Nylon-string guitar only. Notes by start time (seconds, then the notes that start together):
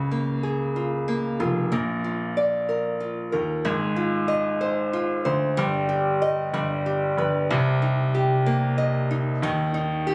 Already playing: C#3
0.11 A#3
0.43 G#4
0.76 F4
1.08 A#3
1.40 F4
1.72 A#3
2.04 F4
2.37 D5
2.69 A#4
3.00 F4
3.32 A#4
3.65 G#3
3.96 F4
4.28 D#5
4.61 C5
4.93 F4
5.25 C5
5.57 G3
5.89 G4
6.22 D#5
6.54 G3
6.86 G4
7.18 B4
7.51 C3
7.82 D#4
8.15 G4
8.46 A#3
8.78 D#5
9.11 D#4
9.43 D#3
9.74 D#4
10.07 G4